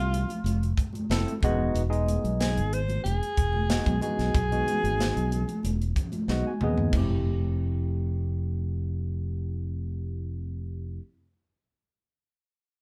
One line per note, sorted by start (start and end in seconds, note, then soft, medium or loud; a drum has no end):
0.00 0.23 C2 medium
0.00 0.21 A3 medium
0.00 0.20 C4 medium
0.00 0.73 F4 loud
0.00 0.21 G4 medium
0.00 0.21 E5 medium
0.13 closed hi-hat medium
0.13 low conga medium
0.29 closed hi-hat soft
0.29 high conga medium
0.44 0.72 F1 medium
0.44 closed hi-hat medium
0.44 high conga medium
0.63 closed hi-hat soft
0.78 kick medium
0.78 closed hi-hat medium
0.93 closed hi-hat soft
0.93 high conga medium
1.10 1.24 F1 medium
1.10 1.32 A3 medium
1.10 1.33 C4 medium
1.10 1.33 E4 medium
1.10 1.33 A4 medium
1.10 snare medium
1.10 closed hi-hat medium
1.26 closed hi-hat soft
1.26 high conga medium
1.41 1.70 E1 medium
1.41 1.82 G#3 medium
1.41 1.82 B3 medium
1.41 1.82 D#4 medium
1.41 1.82 F#4 loud
1.41 kick medium
1.41 closed hi-hat soft
1.41 low conga medium
1.75 2.16 E1 medium
1.75 closed hi-hat medium
1.90 2.79 G#3 medium
1.90 2.79 B3 medium
1.90 2.79 D#4 medium
1.90 2.79 G#4 medium
1.90 closed hi-hat soft
2.06 closed hi-hat medium
2.06 high conga medium
2.24 2.58 B1 medium
2.24 closed hi-hat soft
2.40 2.75 G#4 medium
2.40 snare medium
2.40 closed hi-hat medium
2.57 2.98 G#1 medium
2.57 closed hi-hat soft
2.73 3.03 C5 medium
2.73 closed hi-hat soft
2.89 closed hi-hat soft
2.89 high conga medium
3.04 3.19 E1 medium
3.04 3.98 G#4 medium
3.04 closed hi-hat medium
3.04 high conga medium
3.23 closed hi-hat soft
3.37 3.79 E1 medium
3.37 kick medium
3.37 closed hi-hat medium
3.53 high conga medium
3.70 3.92 G#3 medium
3.70 3.92 B3 medium
3.70 3.92 D#4 medium
3.70 3.92 F#4 medium
3.70 snare loud
3.70 closed hi-hat medium
3.85 3.99 B1 medium
3.85 kick medium
3.85 closed hi-hat soft
3.85 high conga medium
4.01 4.35 G#3 medium
4.01 4.35 B3 medium
4.01 4.35 D#4 medium
4.01 4.35 F#4 medium
4.01 5.92 G#4 medium
4.01 closed hi-hat soft
4.01 low conga medium
4.19 4.32 B1 medium
4.19 snare soft
4.19 closed hi-hat soft
4.34 4.62 B1 medium
4.34 kick medium
4.34 closed hi-hat medium
4.52 5.40 G#3 medium
4.52 5.40 B3 medium
4.52 5.40 D#4 medium
4.52 5.40 F#4 medium
4.52 closed hi-hat soft
4.67 closed hi-hat soft
4.67 high conga medium
4.67 low conga medium
4.84 5.11 G#1 medium
4.84 closed hi-hat soft
5.00 snare medium
5.00 closed hi-hat medium
5.16 5.43 B1 medium
5.16 closed hi-hat soft
5.31 closed hi-hat soft
5.31 low conga medium
5.48 closed hi-hat soft
5.48 high conga medium
5.63 5.91 E1 medium
5.63 closed hi-hat medium
5.63 high conga medium
5.82 closed hi-hat soft
5.96 kick medium
5.96 closed hi-hat soft
5.96 low conga medium
6.12 closed hi-hat soft
6.12 high conga medium
6.28 6.42 B1 medium
6.28 6.51 G#3 medium
6.28 6.51 B3 medium
6.28 6.51 D#4 medium
6.28 6.51 F#4 medium
6.28 6.44 D#5 medium
6.28 snare soft
6.45 6.91 G#5 medium
6.45 high conga medium
6.61 6.89 D#2 medium
6.61 6.94 G#3 medium
6.61 6.94 B3 medium
6.61 6.94 D#4 medium
6.61 6.94 G#4 medium
6.61 mid tom medium
6.61 low conga medium
6.78 floor tom medium
6.93 10.98 F1 medium
6.93 10.99 A3 medium
6.93 10.99 C4 medium
6.93 11.00 E4 medium
6.93 kick medium
6.93 crash medium
6.93 high conga medium
6.97 11.00 G4 medium